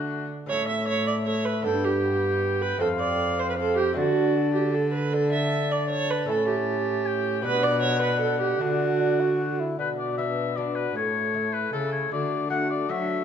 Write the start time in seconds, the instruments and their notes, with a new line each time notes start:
Already playing: lute D3 A3 D4, cello D3, bassoon A3, viola D4, oboe F#4
0.46 lute A2 A3 C#4, cello A2, bassoon A3, viola C#5, oboe E5
0.69 viola E5
0.88 viola C#5
1.07 viola D5
1.27 bassoon A3, viola C#5, oboe E5
1.45 viola B4
1.62 cello G2, lute G2 B3 D4, bassoon B3, viola A4
1.66 oboe G5
1.84 viola G4
2.62 viola B4
2.78 cello F2, lute F2 A3 C4 F4, bassoon C4, viola A4, oboe F5
3.00 viola D5
3.39 viola C5
3.50 viola B4
3.57 bassoon C4, viola A4, oboe F5
3.77 viola G4, oboe G5
3.93 lute D3 A3 D4 F#4, bassoon D4, viola F#4
3.97 cello D3, oboe A5
4.55 viola G4
4.74 viola A4
4.94 viola B4
5.14 bassoon D4, viola A4, oboe A5
5.33 viola E5
5.72 viola D5
5.90 viola C#5
6.10 viola B4
6.26 cello A2, lute A2 A3 C#4 E4, bassoon C#4, viola A4
6.30 oboe A5
6.48 viola G4
7.06 oboe G5
7.43 cello B2, lute B2 B3 D4, bassoon D4, viola B4, oboe F#5
7.63 viola D5
7.82 viola C#5
8.02 viola B4
8.22 viola A4
8.41 viola G4
8.59 cello D3, lute D3 A3 D4, bassoon D4, viola F#4, oboe F#5
9.00 bassoon D4
9.20 bassoon F#4
9.59 bassoon E4
9.78 cello B2, lute B2, bassoon D4, viola F#4, oboe B4
9.99 oboe D5
10.18 lute B3 D4, oboe E5
10.57 lute B3 D4, bassoon D4, viola F#4, oboe D5
10.75 oboe B4
10.95 cello A2, lute A2, bassoon A3, viola A4, oboe C#5
11.34 lute A3 E4
11.53 oboe B4
11.72 cello C#3, lute C#3 A3 E4, bassoon A3, viola A4, oboe A4
11.92 oboe C#5
12.12 lute D3, cello D3, bassoon A3, viola F#4, oboe D5
12.50 lute A3 D4 F#4, bassoon A3, viola F#4, oboe F#5
12.70 oboe D5
12.89 lute F#3 A3 D4 F#4, cello F#3, oboe E5